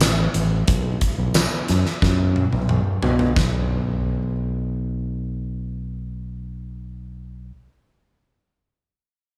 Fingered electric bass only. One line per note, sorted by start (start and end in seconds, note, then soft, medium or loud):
0.00 0.26 A1 medium
0.35 0.62 A1 medium
0.68 0.95 B1 loud
1.18 1.46 B1 medium
1.69 1.83 F#2 medium
2.02 2.43 F#2 medium
2.53 2.80 B1 medium
3.03 3.30 B2 medium
3.37 7.50 B1 medium